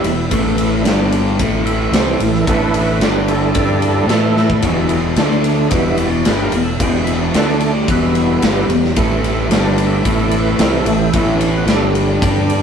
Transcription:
Already playing: tonewheel organ E4
0.04 fingered electric bass E1, overdriven electric guitar E2 B2, ride
0.30 fingered electric bass A1, overdriven electric guitar A2 E3 A3, tonewheel organ E3 A3 E4, kick, ride
0.58 ride
0.82 fingered electric bass G1, tonewheel organ D3 G3 D4, snare, ride
0.86 overdriven electric guitar G2 D3 G3
1.12 ride
1.39 fingered electric bass A1, overdriven electric guitar A2 E3 A3, kick, ride
1.65 tonewheel organ E3 A3 E4, ride
1.92 fingered electric bass C2, overdriven electric guitar C3 G3 C4, snare, ride
2.19 fingered electric bass A1, overdriven electric guitar A2 E3, ride
2.35 snare
2.43 overdriven electric guitar A2, tonewheel organ D4 A#4
2.47 fingered electric bass A1, overdriven electric guitar E3 A3, tonewheel organ B4, kick, ride
2.74 tonewheel organ D4 B4, ride
3.00 fingered electric bass G1, overdriven electric guitar G2 D3 G3, tonewheel organ D3 G3 D4, snare, ride
3.04 tonewheel organ B4
3.28 tonewheel organ E4 A4, ride
3.52 fingered electric bass G2, overdriven electric guitar D4, tonewheel organ E4 A4, kick, ride
3.56 overdriven electric guitar G3 G4
3.81 tonewheel organ E4 A4, ride
4.07 fingered electric bass A2, tonewheel organ E3 A3 E4 A4, overdriven electric guitar A3 E4 A4, snare, ride
4.37 snare
4.50 kick
4.62 fingered electric bass E1, overdriven electric guitar E2 B2 E3, tonewheel organ G3 B3 E4, kick, ride
4.89 ride
5.16 fingered electric bass D2, tonewheel organ D3 A3 D4, overdriven electric guitar D3 A3 D4, snare, ride
5.31 snare
5.44 ride
5.67 tonewheel organ E3 G3 D#5, ride
5.71 fingered electric bass E1, overdriven electric guitar E2 B2 E3, tonewheel organ B3 E5, kick
5.97 ride
6.06 tonewheel organ D5
6.25 fingered electric bass G1, overdriven electric guitar G2 D3 G3, tonewheel organ B4, snare, ride
6.44 tonewheel organ A#4
6.52 fingered electric bass E1, overdriven electric guitar E2 B2, ride
6.63 tonewheel organ A4
6.80 fingered electric bass E1, overdriven electric guitar E2 B2 E3, tonewheel organ G4, kick, ride
7.03 tonewheel organ E4, ride
7.21 tonewheel organ D4
7.34 fingered electric bass D2, overdriven electric guitar D3 A3 D4, tonewheel organ D3 A3 B3, snare, ride
7.38 tonewheel organ D4
7.49 snare
7.59 tonewheel organ A3, ride
7.74 tonewheel organ G3
7.88 fingered electric bass E1, overdriven electric guitar E2 B2 E3, tonewheel organ G3 B3 E4, kick, ride
8.15 ride
8.42 fingered electric bass G1, overdriven electric guitar G2 D3 G3, snare, ride
8.68 fingered electric bass E1, overdriven electric guitar E2 B2, ride
8.84 snare
8.96 fingered electric bass A1, overdriven electric guitar A2 E3 A3, tonewheel organ E3 A3 E4, kick, ride
9.24 ride
9.49 fingered electric bass G1, overdriven electric guitar G2 D3 G3, tonewheel organ D3 G3 D4, snare, ride
9.78 ride
9.86 tonewheel organ E5
10.04 fingered electric bass A1, overdriven electric guitar A2 E3 A3, tonewheel organ E3 A3 E4, kick, ride
10.23 tonewheel organ D5
10.31 ride
10.43 tonewheel organ B4
10.59 fingered electric bass C2, overdriven electric guitar C3 G3 C4, snare, ride
10.63 tonewheel organ A#4
10.79 tonewheel organ A4
10.85 fingered electric bass A1, overdriven electric guitar A2 E3, ride
10.95 tonewheel organ G4
11.13 fingered electric bass A1, overdriven electric guitar A2 E3 A3, tonewheel organ E3 A3 E4, kick, ride
11.36 tonewheel organ D4
11.41 ride
11.55 tonewheel organ B3
11.66 fingered electric bass G1, overdriven electric guitar G2 D3 G3, snare, ride
11.73 tonewheel organ D3 G3 A3 D4
11.92 tonewheel organ G3, ride
12.07 tonewheel organ G3
12.21 fingered electric bass G2, overdriven electric guitar G3 D4 G4, kick, ride
12.50 ride

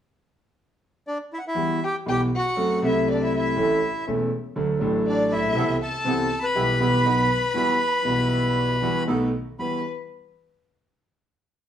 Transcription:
1.07 bandoneon D4 D5
1.33 bandoneon E4 E5
1.38 bandoneon F#5
1.47 bandoneon E4 E5
1.55 grand piano E2 E3 G3 B3 F#4
1.84 bandoneon G4 G5, violin G5
2.06 grand piano B1 B2 E3 G3 B3 F#4, violin G5
2.11 bandoneon G4 G5
2.35 bandoneon F#4 F#5, violin F#5
2.56 grand piano F#2 F#3 A3 C4 A4
2.80 grand piano C2 C3 F#3 A3 C4
2.84 bandoneon E4, grand piano A4, violin E5
2.90 bandoneon E5
3.10 bandoneon D4, violin D5
3.15 bandoneon D5
3.23 bandoneon E4 E5, violin E5
3.36 bandoneon E4 E5, violin E5
3.57 grand piano A1 A2 E3 A3 C#4 A4
4.07 grand piano E1 E2 E3 A3 C#4 A4
4.55 grand piano D2 D3 F#3 A3 D4 A4
4.79 grand piano A1 A2 F#3 A3 D4 A4
5.07 bandoneon D4 D5, violin D5
5.32 bandoneon E4 E5, violin E5
5.37 grand piano A1
5.43 grand piano A#1
5.51 grand piano B1
5.55 grand piano C2 C3 E3 B3 C4 A4, bandoneon C3 B3 C4 A4
5.82 bandoneon A4 A5, violin A5
6.05 grand piano C2 C3 E3 B3 C4 A4, bandoneon C3 B3 C4 A4
6.43 bandoneon B4 B5, violin B5
6.55 grand piano B1 B2 E3 G3 B3 G4, bandoneon B3 E4 G4
6.79 grand piano B1 B2 E3 G3 B3 G4, bandoneon B3 E4 G4
7.04 grand piano B1 B2 D#3 F#3 B3 F#4, bandoneon B3 D#4 F#4
7.54 grand piano E2 E3 G3 B3 F#4, bandoneon G3 E4 F#4
8.03 grand piano B1 B2 E3 G3 B3 F#4, bandoneon G3 E4 F#4
8.81 grand piano E2 E3 G3 B3 F#4, bandoneon G3 E4 F#4
9.07 grand piano B1 B2 D#3 A3 B3 F#4, bandoneon B3 D#4 A4
9.59 grand piano E2 G3 E4 F#4, bandoneon G3 E4 F#4 B5, violin B4

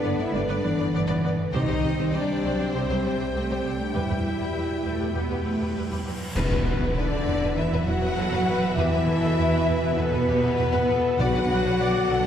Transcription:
Already playing: trombone section D3 B3, cello section B3, string section B3 D4 B4 D5, french horn section D4, violin section D5
0.04 double bass section G1, viola section B3 B4, violin section D5
0.18 double bass section G1, viola section B3 B4, french horn section E4, violin section D5 E5
0.33 double bass section G1, cello section G3, viola section B3 B4, french horn section D4, violin section D5
0.49 double bass section G1, viola section B3 B4, violin section D5
0.63 double bass section G1, cello section E3, viola section B3 B4, violin section D5
0.79 double bass section G1, viola section B3 B4, violin section D5
0.93 double bass section G1, viola section B3 B4, violin section D5
1.08 double bass section G1, viola section B3 B4, violin section D5
1.24 double bass section G1, viola section B3 B4, violin section D5
1.53 double bass section C2, trombone section C3 G3, cello section D#3, viola section C4 G4, string section C4 C5 G5, french horn section D#4, violin section C5 D#5
1.68 double bass section C2, viola section C4 G4, violin section C5
1.83 double bass section C2, viola section C4 G4, violin section C5
1.98 double bass section C2, viola section C4 G4, violin section C5
2.13 double bass section C2, cello section G3, viola section C4 G4, french horn section D4, violin section C5 D5
2.44 double bass section C2, cello section F#3, viola section C4 G4, violin section C5
2.59 double bass section C2, viola section C4 G4, violin section C5
2.74 double bass section C2, cello section G3, french horn section C4, viola section C4 G4, violin section C5
2.89 double bass section C2, viola section C4 G4, violin section C5
3.04 double bass section C2, viola section C4 G4, violin section C5
3.19 double bass section C2, viola section C4 G4, violin section C5
3.34 double bass section C2, cello section A3, french horn section C4, viola section C4 G4, violin section C5
3.49 double bass section C2, viola section C4 G4, violin section C5
3.65 double bass section C2, viola section C4 G4, violin section C5
3.80 french horn section D4, violin section D5
3.93 double bass section E2, trombone section B2, viola section G3 G4, cello section G3, french horn section E4, string section E4 B4, violin section B4 E5, cymbal swell
4.09 double bass section E2, viola section G3 G4, violin section B4
4.24 double bass section E2, viola section G3 G4, violin section B4
4.39 double bass section E2, viola section G3 G4, violin section B4
4.53 double bass section E2, viola section G3 G4, cello section G3, violin section B4
4.84 double bass section E2, viola section G3 G4, cello section A3, violin section B4
4.99 double bass section E2, viola section G3 G4, violin section B4
5.14 double bass section E2, viola section G3 G4, cello section B3, violin section B4
5.29 double bass section E2, viola section G3 G4, violin section B4
5.45 double bass section E2, viola section G3 G4, cello section A3, violin section B4
5.61 double bass section E2, viola section G3 G4, violin section B4
5.75 double bass section E2, cello section G3, viola section G3 G4, violin section B4
5.91 double bass section E2, viola section G3 G4, violin section B4
6.05 double bass section E2, cello section F#3, viola section G3 G4, violin section B4
6.35 timpani E2, double bass section E2, cello section B2, trombone section B2 E3, string section B3 E4 B4 E5, french horn section B3, violin section B4, flute section B4, concert bass drum, crash, impact
6.52 double bass section E2, violin section B4
6.67 double bass section E2, violin section B4
6.82 double bass section E2, violin section B4
6.95 double bass section E2, cello section D3, french horn section D4, violin section B4 D5, flute section D5
7.27 double bass section E2, violin section B4
7.42 double bass section E2, violin section B4
7.56 double bass section E2, cello section E3, viola section E4, french horn section E4, violin section B4 E5, flute section E5
7.73 double bass section E2, violin section B4
7.86 double bass section E2, cello section F#3, french horn section F#4, violin section B4 F#5, flute section F#5
8.03 double bass section E2, violin section B4
8.17 double bass section E2, viola section A4, violin section B4
8.32 double bass section E2, violin section B4
8.47 double bass section E2, viola section B4, violin section B4
8.76 double bass section E2, cello section E3, french horn section E4, viola section G4, violin section B4 E5, flute section E5
8.92 double bass section E2, violin section B4
9.07 double bass section E2, viola section A4, violin section B4
9.22 double bass section E2, violin section B4
9.37 double bass section E2, viola section B4, violin section B4
9.68 double bass section E2, violin section B4
9.82 double bass section E2, violin section B4
9.97 double bass section E2, cello section B2, french horn section B3, viola section A4, violin section B4, flute section B4
10.12 double bass section E2, violin section B4
10.27 double bass section E2, viola section G4, violin section B4
10.42 double bass section E2, violin section B4
10.58 double bass section E2, violin section B4, viola section B4
10.73 double bass section E2, violin section B4
10.88 double bass section E2, viola section A4, violin section B4
11.18 double bass section B1, timpani B2, trombone section D3 B3, cello section F#3, string section B3 D4 B4 F#5, french horn section F#4, viola section B4, violin section D5 F#5, flute section F#5
11.34 double bass section B1, violin section D5
11.49 double bass section B1, viola section B4, violin section D5
11.64 double bass section B1, violin section D5
11.79 double bass section B1, violin section D5, viola section D5
12.09 double bass section B1, viola section A4, violin section D5

